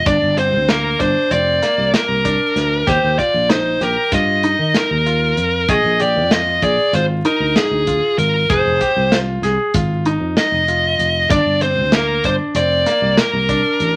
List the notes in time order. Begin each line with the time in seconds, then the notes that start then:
0.06 G1 D4 D5, kick, closed hi-hat
0.22 G1
0.37 C4 C5, closed hi-hat
0.52 D2
0.69 A#3 A#4, snare, closed hi-hat
0.99 G1 D4 C5, kick, closed hi-hat
1.31 F1 C4 D5, closed hi-hat
1.62 A#3, snare, closed hi-hat
1.78 C2
1.94 A#4, snare, closed hi-hat
2.09 C2
2.25 D4, kick, closed hi-hat
2.56 D2, snare, closed hi-hat
2.87 D#2 G4 C5, kick, closed hi-hat
3.03 D#2
3.18 F4 D5, kick, closed hi-hat
3.34 A#1
3.49 D#4 C5, snare, closed hi-hat
3.81 A#1 G4 A#4, snare, closed hi-hat
4.12 G2 F4 D#5, kick, snare, closed hi-hat
4.43 D#4, closed hi-hat
4.59 D#3
4.74 A#4, snare, closed hi-hat
4.91 D#2
5.06 F4, closed hi-hat
5.37 F2, closed hi-hat
5.68 A#1 G#4 D#5, kick, closed hi-hat
5.85 A#1
6.00 G4 D5, closed hi-hat
6.16 F2
6.31 F4 D#5, snare, closed hi-hat
6.62 A#1 G#4 D5, kick, closed hi-hat
6.93 G#1 F4 C5, closed hi-hat
7.25 D#4 A#4, closed hi-hat
7.40 D2
7.56 G#4, snare, closed hi-hat
7.71 D2
7.87 F4, kick, closed hi-hat
8.18 G#1 A#4, closed hi-hat
8.50 F1 G#4 C5, kick, closed hi-hat
8.65 F1
8.81 G4, kick, closed hi-hat
8.96 C2
9.12 F4, snare, closed hi-hat
9.42 C2 G#4, snare, closed hi-hat
9.74 G#1 F4, kick, closed hi-hat
10.05 D#4, closed hi-hat
10.20 F2
10.37 D#5, snare, closed hi-hat
10.52 F1
10.68 F4, closed hi-hat
10.99 F1, closed hi-hat
11.30 G1 D4 D5, kick, closed hi-hat
11.45 G1
11.61 C4 C5, closed hi-hat
11.77 D2
11.92 A#3 A#4, snare, closed hi-hat
12.24 G1 D4 C5, kick, closed hi-hat
12.55 F1 C4 D5, closed hi-hat
12.86 A#3, snare, closed hi-hat
13.02 C2
13.18 A#4, snare, closed hi-hat
13.33 C2
13.49 D4, kick, closed hi-hat
13.80 A1, closed hi-hat